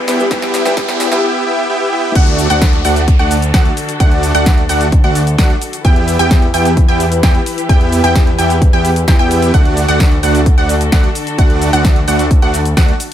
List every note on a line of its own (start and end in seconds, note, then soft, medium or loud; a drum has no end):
0.00 1.20 E3 medium
0.00 0.16 G3 medium
0.00 0.16 B3 medium
0.00 0.17 E4 medium
0.00 1.20 E4 medium
0.00 1.20 G4 medium
0.00 0.17 B4 medium
0.00 1.20 B4 medium
0.00 riser medium
0.08 0.28 E2 medium
0.08 0.25 B3 medium
0.08 0.25 E4 medium
0.08 0.25 G4 medium
0.08 0.25 E5 medium
0.08 0.25 G5 medium
0.08 snare medium
0.08 open hi-hat loud
0.08 cabasa medium
0.19 0.29 G3 medium
0.19 0.29 B3 medium
0.19 0.29 E4 medium
0.19 0.29 B4 medium
0.19 cabasa soft
0.30 0.63 E2 medium
0.30 0.62 G3 medium
0.30 0.63 B3 medium
0.30 0.63 E4 medium
0.30 0.63 G4 medium
0.30 0.63 B4 medium
0.30 0.63 E5 medium
0.30 0.63 G5 loud
0.30 kick loud
0.30 snare medium
0.30 closed hi-hat medium
0.30 cabasa soft
0.42 snare medium
0.42 closed hi-hat soft
0.54 snare medium
0.54 open hi-hat loud
0.54 cabasa medium
0.65 0.75 E2 loud
0.65 0.75 G3 medium
0.65 0.75 B3 medium
0.65 0.75 B3 loud
0.65 0.75 E4 medium
0.65 0.75 G4 medium
0.65 0.75 B4 medium
0.65 0.75 E5 medium
0.65 0.75 G5 loud
0.65 snare medium
0.65 closed hi-hat soft
0.65 cabasa soft
0.76 1.09 E2 medium
0.76 1.09 G3 medium
0.76 1.09 B3 medium
0.76 1.09 E4 medium
0.76 1.09 G4 medium
0.76 1.09 B4 medium
0.76 1.09 E5 medium
0.76 1.09 G5 medium
0.76 kick loud
0.76 snare loud
0.76 closed hi-hat medium
0.76 cabasa soft
0.89 snare medium
0.89 closed hi-hat soft
1.00 snare medium
1.00 open hi-hat loud
1.00 cabasa medium
1.11 1.21 E2 medium
1.11 1.21 G3 medium
1.11 1.21 B3 medium
1.11 1.21 B3 loud
1.11 1.21 E4 medium
1.11 1.21 G4 loud
1.11 1.22 B4 medium
1.11 1.21 E5 medium
1.11 1.21 G5 loud
1.11 snare medium
1.11 closed hi-hat soft
1.11 cabasa soft
1.23 1.45 B3 medium
1.23 1.45 E4 medium
1.23 1.45 G4 medium
1.23 1.45 E5 medium
1.23 1.44 G5 loud
1.46 1.68 B3 medium
1.46 1.68 E4 medium
1.46 1.68 G4 medium
1.46 1.68 E5 medium
1.46 1.68 G5 loud
1.70 1.91 B3 medium
1.70 1.91 E4 medium
1.70 1.91 G4 medium
1.70 1.91 E5 medium
1.70 1.91 G5 loud
1.92 2.14 B3 medium
1.92 2.14 E4 medium
1.92 2.14 G4 medium
1.92 2.14 E5 medium
1.92 2.14 G5 loud
2.15 2.48 D2 medium
2.15 5.81 D3 medium
2.15 2.47 A3 medium
2.15 5.81 D4 medium
2.15 2.47 D4 medium
2.15 5.81 F#4 medium
2.15 2.47 F#4 medium
2.15 5.81 A4 medium
2.15 2.47 D5 medium
2.15 2.47 F#5 loud
2.15 kick loud
2.15 closed hi-hat medium
2.15 crash loud
2.15 downlifter medium
2.15 cabasa soft
2.27 closed hi-hat soft
2.39 open hi-hat loud
2.39 cabasa medium
2.50 2.82 D2 loud
2.50 2.77 A3 loud
2.50 2.77 D4 medium
2.50 2.77 F#4 medium
2.50 2.77 D5 medium
2.50 2.77 F#5 loud
2.50 closed hi-hat medium
2.50 cabasa soft
2.62 kick loud
2.62 snare loud
2.62 closed hi-hat medium
2.62 cabasa soft
2.73 closed hi-hat soft
2.85 3.17 D2 loud
2.85 3.02 A3 medium
2.85 3.02 D4 medium
2.85 3.02 F#4 medium
2.85 3.02 D5 medium
2.85 3.02 F#5 medium
2.85 3.02 F#5 loud
2.85 open hi-hat loud
2.85 cabasa medium
2.96 closed hi-hat medium
2.96 cabasa soft
3.08 kick loud
3.08 closed hi-hat medium
3.08 cabasa soft
3.19 3.52 D2 medium
3.19 3.36 A3 medium
3.19 3.36 D4 medium
3.19 3.36 F#4 medium
3.19 3.36 D5 medium
3.19 3.36 F#5 loud
3.19 closed hi-hat soft
3.31 open hi-hat loud
3.31 cabasa medium
3.42 closed hi-hat medium
3.42 cabasa soft
3.54 3.69 D2 loud
3.54 3.71 A3 medium
3.54 3.71 D4 medium
3.54 3.71 F#4 medium
3.54 3.71 D5 medium
3.54 3.71 F#5 loud
3.54 kick loud
3.54 snare loud
3.54 closed hi-hat medium
3.54 cabasa soft
3.65 closed hi-hat soft
3.77 open hi-hat loud
3.77 cabasa medium
3.89 closed hi-hat medium
3.89 cabasa soft
4.00 4.32 D2 loud
4.00 4.32 A3 loud
4.00 4.32 D4 medium
4.00 4.32 F#4 medium
4.00 4.32 D5 medium
4.00 4.32 F#5 loud
4.00 kick loud
4.00 closed hi-hat medium
4.00 cabasa soft
4.12 closed hi-hat soft
4.23 open hi-hat loud
4.23 cabasa medium
4.35 4.67 D2 loud
4.35 4.62 A3 loud
4.35 4.62 D4 medium
4.35 4.62 F#4 medium
4.35 4.62 D5 medium
4.35 4.62 F#5 loud
4.35 closed hi-hat medium
4.35 cabasa soft
4.46 kick loud
4.46 snare loud
4.46 closed hi-hat medium
4.46 cabasa soft
4.58 closed hi-hat soft
4.69 5.02 D2 loud
4.69 4.86 A3 medium
4.69 4.86 D4 medium
4.69 4.86 F#4 medium
4.69 4.86 D5 medium
4.69 4.86 F#5 medium
4.69 open hi-hat loud
4.69 cabasa medium
4.81 closed hi-hat medium
4.81 cabasa soft
4.92 kick loud
4.92 closed hi-hat medium
4.92 cabasa soft
5.04 5.36 D2 medium
5.04 5.21 A3 medium
5.04 5.21 D4 medium
5.04 5.21 F#4 medium
5.04 5.21 D5 medium
5.04 5.21 F#5 medium
5.04 5.21 F#5 loud
5.04 closed hi-hat soft
5.15 open hi-hat loud
5.15 cabasa medium
5.27 closed hi-hat medium
5.27 cabasa soft
5.38 5.53 D2 loud
5.38 5.56 A3 medium
5.38 5.56 D4 medium
5.38 5.56 F#4 medium
5.38 5.55 D5 medium
5.38 5.56 F#5 loud
5.38 5.56 F#5 medium
5.38 kick loud
5.38 snare loud
5.38 closed hi-hat medium
5.38 cabasa soft
5.50 closed hi-hat soft
5.62 open hi-hat loud
5.62 cabasa medium
5.73 closed hi-hat medium
5.73 cabasa soft
5.85 6.17 E2 medium
5.85 9.50 E3 medium
5.85 6.17 B3 medium
5.85 9.50 E4 medium
5.85 6.17 E4 medium
5.85 9.50 G4 medium
5.85 6.17 G4 medium
5.85 9.50 B4 medium
5.85 6.17 E5 medium
5.85 6.17 G5 loud
5.85 kick loud
5.85 closed hi-hat medium
5.85 cabasa soft
5.96 closed hi-hat soft
6.08 open hi-hat loud
6.08 cabasa medium
6.19 6.52 E2 loud
6.19 6.46 B3 loud
6.19 6.46 E4 medium
6.19 6.46 G4 medium
6.19 6.46 E5 medium
6.19 6.46 G5 loud
6.19 closed hi-hat medium
6.19 cabasa soft
6.31 kick loud
6.31 snare loud
6.31 closed hi-hat medium
6.31 cabasa soft
6.42 closed hi-hat soft
6.54 6.86 E2 loud
6.54 6.71 B3 medium
6.54 6.71 E4 medium
6.54 6.71 G4 medium
6.54 6.71 E5 medium
6.54 6.71 G5 medium
6.54 open hi-hat loud
6.54 cabasa medium
6.65 closed hi-hat medium
6.65 cabasa soft
6.77 kick loud
6.77 closed hi-hat medium
6.77 cabasa soft
6.88 7.21 E2 loud
6.88 7.06 B3 medium
6.88 7.06 E4 medium
6.88 7.06 G4 medium
6.88 7.05 E5 medium
6.88 7.05 G5 loud
6.88 7.06 G5 loud
6.88 closed hi-hat soft
7.00 open hi-hat loud
7.00 cabasa medium
7.12 closed hi-hat medium
7.12 cabasa soft
7.23 7.38 E2 loud
7.23 7.40 B3 medium
7.23 7.40 E4 medium
7.23 7.40 G4 medium
7.23 7.40 E5 medium
7.23 7.40 G5 loud
7.23 kick loud
7.23 snare loud
7.23 closed hi-hat medium
7.23 cabasa soft
7.35 closed hi-hat soft
7.46 open hi-hat loud
7.46 cabasa medium
7.58 closed hi-hat soft
7.58 cabasa soft
7.69 8.02 E2 medium
7.69 8.01 B3 medium
7.69 8.01 E4 medium
7.69 8.01 G4 medium
7.69 8.01 E5 medium
7.69 8.01 G5 loud
7.69 kick loud
7.69 closed hi-hat medium
7.69 cabasa soft
7.81 closed hi-hat soft
7.92 open hi-hat loud
7.92 cabasa medium
8.04 8.36 E2 loud
8.04 8.31 B3 loud
8.04 8.31 E4 medium
8.04 8.31 G4 medium
8.04 8.31 E5 medium
8.04 8.31 G5 loud
8.04 closed hi-hat soft
8.04 cabasa soft
8.15 kick loud
8.15 snare loud
8.15 closed hi-hat medium
8.15 cabasa soft
8.27 closed hi-hat soft
8.38 8.71 E2 loud
8.38 8.56 B3 medium
8.38 8.56 E4 medium
8.38 8.56 G4 medium
8.38 8.56 E5 medium
8.38 8.55 G5 medium
8.38 8.56 G5 medium
8.38 open hi-hat loud
8.38 cabasa medium
8.50 closed hi-hat soft
8.50 cabasa soft
8.62 kick loud
8.62 closed hi-hat medium
8.62 cabasa soft
8.73 9.05 E2 medium
8.73 8.90 B3 medium
8.73 8.90 E4 medium
8.73 8.90 G4 medium
8.73 8.90 E5 medium
8.73 8.90 G5 loud
8.73 closed hi-hat soft
8.85 open hi-hat loud
8.85 cabasa medium
8.96 closed hi-hat soft
8.96 cabasa soft
9.08 9.17 E2 loud
9.08 9.17 B3 medium
9.08 9.17 E4 medium
9.08 9.17 G4 medium
9.08 9.17 E5 medium
9.08 9.17 G5 medium
9.08 kick loud
9.08 snare loud
9.08 closed hi-hat medium
9.08 cabasa soft
9.19 9.52 E2 medium
9.19 9.51 B3 medium
9.19 9.51 E4 medium
9.19 9.51 G4 medium
9.19 9.51 E5 medium
9.19 9.51 G5 loud
9.19 closed hi-hat soft
9.31 open hi-hat loud
9.31 cabasa medium
9.42 closed hi-hat soft
9.42 cabasa soft
9.54 9.86 D2 medium
9.54 13.13 D3 medium
9.54 9.86 A3 medium
9.54 9.86 D4 medium
9.54 13.13 D4 medium
9.54 9.86 F#4 medium
9.54 13.13 F#4 medium
9.54 13.13 A4 medium
9.54 9.86 D5 medium
9.54 9.86 F#5 loud
9.54 kick loud
9.54 closed hi-hat medium
9.54 cabasa soft
9.65 closed hi-hat soft
9.77 open hi-hat loud
9.77 cabasa medium
9.88 10.21 D2 loud
9.88 10.16 A3 loud
9.88 10.16 D4 medium
9.88 10.16 F#4 medium
9.88 10.16 D5 medium
9.88 10.16 F#5 loud
9.88 closed hi-hat soft
9.88 cabasa soft
10.00 kick loud
10.00 snare loud
10.00 closed hi-hat medium
10.00 cabasa soft
10.12 closed hi-hat soft
10.23 10.55 D2 loud
10.23 10.40 A3 medium
10.23 10.40 D4 medium
10.23 10.40 F#4 medium
10.23 10.40 D5 medium
10.23 10.40 F#5 medium
10.23 open hi-hat loud
10.23 cabasa medium
10.35 closed hi-hat soft
10.35 cabasa soft
10.46 kick loud
10.46 closed hi-hat medium
10.46 cabasa soft
10.58 10.90 D2 loud
10.58 10.75 A3 medium
10.58 10.75 D4 medium
10.58 10.75 F#4 medium
10.58 10.75 D5 medium
10.58 10.75 F#5 loud
10.58 closed hi-hat soft
10.69 open hi-hat loud
10.69 cabasa medium
10.81 closed hi-hat medium
10.81 cabasa soft
10.92 11.07 D2 loud
10.92 11.09 A3 medium
10.92 11.09 D4 medium
10.92 11.09 F#4 medium
10.92 11.09 D5 medium
10.92 11.09 F#5 loud
10.92 kick loud
10.92 snare loud
10.92 closed hi-hat medium
10.92 cabasa soft
11.04 closed hi-hat soft
11.15 open hi-hat loud
11.15 cabasa medium
11.27 closed hi-hat soft
11.27 cabasa soft
11.38 11.71 D2 medium
11.38 11.70 A3 medium
11.38 11.70 D4 medium
11.38 11.70 F#4 medium
11.38 11.70 D5 medium
11.38 11.70 F#5 loud
11.38 kick loud
11.38 closed hi-hat medium
11.38 cabasa soft
11.50 closed hi-hat soft
11.62 open hi-hat loud
11.62 cabasa medium
11.73 12.05 D2 loud
11.73 12.00 A3 loud
11.73 12.00 D4 medium
11.73 12.00 F#4 medium
11.73 12.00 D5 medium
11.73 12.00 F#5 loud
11.73 closed hi-hat medium
11.73 cabasa soft
11.85 kick loud
11.85 snare loud
11.85 closed hi-hat medium
11.85 cabasa soft
11.96 closed hi-hat soft
12.08 12.40 D2 loud
12.08 12.25 A3 medium
12.08 12.25 D4 medium
12.08 12.25 F#4 medium
12.08 12.25 D5 medium
12.08 12.25 F#5 medium
12.08 open hi-hat loud
12.08 cabasa medium
12.19 closed hi-hat medium
12.19 cabasa soft
12.31 kick loud
12.31 closed hi-hat medium
12.31 cabasa soft
12.42 12.75 D2 loud
12.42 12.59 A3 medium
12.42 12.59 D4 medium
12.42 12.59 F#4 medium
12.42 12.59 D5 medium
12.42 12.59 F#5 loud
12.42 closed hi-hat soft
12.54 open hi-hat loud
12.54 cabasa medium
12.65 closed hi-hat medium
12.65 cabasa soft
12.77 12.92 D2 medium
12.77 12.94 A3 medium
12.77 12.94 D4 medium
12.77 12.94 F#4 medium
12.77 12.94 D5 medium
12.77 12.94 F#5 loud
12.77 kick loud
12.77 snare loud
12.77 closed hi-hat medium
12.77 cabasa soft
12.89 closed hi-hat soft
13.00 open hi-hat loud
13.00 cabasa medium